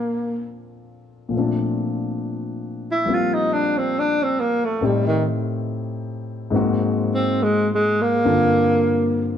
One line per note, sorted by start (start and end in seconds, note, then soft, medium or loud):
0.00 1.27 A#2 soft
0.00 1.29 F3 soft
0.00 0.46 A#3 medium
0.00 1.35 C4 soft
0.00 1.36 D4 soft
0.00 1.34 A4 soft
1.29 4.78 A#2 soft
1.29 3.04 F3 soft
1.34 4.79 A3 soft
1.34 3.07 C4 soft
1.39 4.83 D4 soft
2.92 3.16 E4 medium
3.05 4.79 F3 soft
3.05 4.79 G3 soft
3.05 4.80 A#3 soft
3.05 4.81 C4 soft
3.14 3.36 F4 medium
3.34 3.54 D#4 medium
3.53 3.79 D4 medium
3.78 4.01 C4 medium
4.00 4.25 D4 medium
4.23 4.42 C4 medium
4.40 4.66 A#3 medium
4.65 4.87 A3 medium
4.81 6.52 A2 soft
4.81 6.52 A3 soft
4.81 6.52 C4 soft
4.81 6.53 D#4 soft
4.81 6.53 G4 medium
4.86 5.07 G3 medium
5.08 5.25 D#3 medium
6.50 8.23 G#2 medium
6.50 8.24 G#3 medium
6.50 8.23 A#3 soft
6.50 8.24 C4 soft
6.56 8.26 F#4 medium
7.15 7.45 C4 medium
7.43 7.69 G#3 medium
7.75 8.03 G#3 medium
8.02 9.31 A#3 medium
8.25 9.38 G2 medium
8.25 9.38 D3 medium
8.25 9.38 A#3 soft
8.25 9.38 C4 soft
8.25 9.38 F4 medium
8.25 9.38 A4 medium